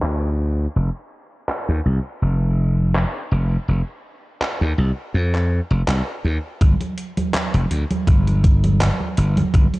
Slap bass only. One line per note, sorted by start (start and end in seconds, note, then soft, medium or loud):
0.03 0.66 D2 medium
0.76 0.88 F1 medium
1.69 1.79 D#2 medium
1.85 1.98 C2 medium
2.22 3.03 F1 medium
3.31 3.56 F1 loud
3.68 3.81 F1 medium
4.61 4.72 D#2 medium
4.78 4.90 C2 medium
5.14 5.59 F2 medium
5.71 5.82 F1 loud
5.88 6.00 C2 medium
6.24 6.37 D#2 medium
6.61 6.74 G1 medium
7.54 7.65 F1 medium
7.71 7.83 D2 medium
8.07 8.89 G1 medium
9.18 9.42 G1 loud
9.54 9.66 G1 loud